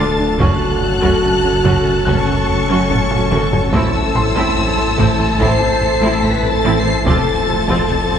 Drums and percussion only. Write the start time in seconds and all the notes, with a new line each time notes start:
0.40 taiko
1.03 taiko
1.65 taiko
2.07 taiko
2.48 taiko low
2.90 taiko low-mid
3.11 taiko low-mid
3.32 taiko mid
3.52 taiko low
3.73 taiko
4.36 taiko
4.98 taiko
5.40 taiko
5.81 taiko low
7.06 taiko
7.69 taiko